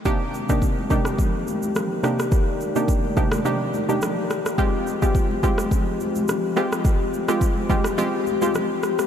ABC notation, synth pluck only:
X:1
M:4/4
L:1/16
Q:"Swing 16ths" 1/4=106
K:Cm
V:1 name="Synth pluck"
[C,B,DEG]3 [C,B,DEG] z2 [C,B,DEG] z6 z [C,B,DEG] z | z3 [C,B,DEG] z2 [C,B,DEG] z [C,B,DEG]3 [C,B,DEG] z4 | [A,CFG]3 [A,CFG] z2 [A,CFG] z6 z [A,CFG] z | z3 [A,CFG] z2 [A,CFG] z [A,CFG]3 [A,CFG] z4 |]